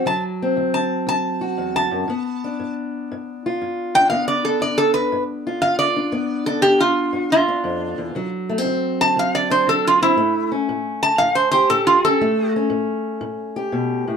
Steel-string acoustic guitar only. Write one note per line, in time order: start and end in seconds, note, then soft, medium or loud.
0.05 0.53 D2 medium
0.05 2.09 F#3 medium
0.42 2.08 C4 medium
0.56 1.04 D2 medium
1.07 1.54 D2 medium
1.41 2.06 F#4 medium
1.58 1.91 E2 medium
1.91 2.07 F#2 medium
2.08 2.56 G2 medium
2.08 4.11 B3 medium
2.44 3.94 D4 medium
2.60 3.07 G2 medium
3.12 3.58 G2 medium
3.46 4.14 F4 medium
3.62 4.09 G2 medium
3.94 4.46 D4 medium
4.11 4.59 G2 medium
4.11 6.11 B3 medium
4.46 5.96 D4 medium
4.61 5.09 G2 medium
5.12 5.60 G2 medium
5.47 6.12 F4 medium
5.62 6.10 G2 medium
5.96 6.46 D4 medium
6.12 6.60 G2 medium
6.12 8.13 B3 medium
6.47 7.47 D4 medium
6.61 7.10 G2 medium
7.13 7.61 G2 medium
7.48 8.14 D4 medium
7.64 7.98 F2 medium
7.98 8.15 E2 medium
8.15 8.63 D2 medium
8.15 10.17 F#3 medium
8.49 8.58 A3 medium
8.58 10.00 C4 medium
8.65 9.13 D2 medium
9.16 9.64 D2 medium
9.50 10.17 D4 medium
9.67 10.14 D2 medium
10.02 10.16 C4 medium
10.17 10.64 A2 medium
10.17 12.18 A3 medium
10.52 12.03 C#4 medium
10.69 11.16 A2 medium
11.20 11.67 A2 medium
11.53 12.24 G4 medium
11.70 12.17 A2 medium
12.05 12.18 C#4 medium
12.21 12.68 A2 medium
12.21 14.17 A3 medium
12.56 14.17 C#4 medium
12.70 13.17 A2 medium
13.21 13.68 A2 medium
13.56 14.17 G4 medium
13.72 14.06 B2 medium
14.08 14.17 A2 medium